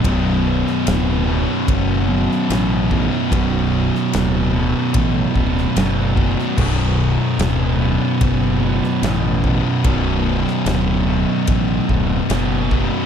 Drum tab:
CC |----------------|----------------|x---------------|----------------|
RD |b---b---b---b---|b---b---b---b---|----b---b---b---|b---b---b---b---|
SD |---oo------oo---|---oo------oo--o|----o------oo---|---oo-------o---|
BD |o-------o-----o-|o-------o-o---o-|o-------o-----o-|o-------o-o---o-|